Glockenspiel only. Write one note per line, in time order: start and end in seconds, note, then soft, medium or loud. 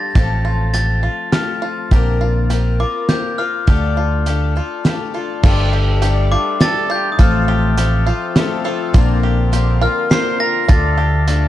0.00 0.72 A6 loud
0.74 1.34 A6 loud
1.32 1.74 F6 medium
2.80 3.10 D6 medium
3.09 3.36 G6 medium
3.38 5.10 F6 medium
6.32 6.62 D6 medium
6.62 6.91 A6 loud
6.91 7.13 G6 loud
7.12 7.19 D#6 medium
7.21 7.74 F6 medium
9.83 10.12 F6 medium
10.11 10.41 C7 loud
10.40 10.70 A#6 loud
10.69 11.24 A6 medium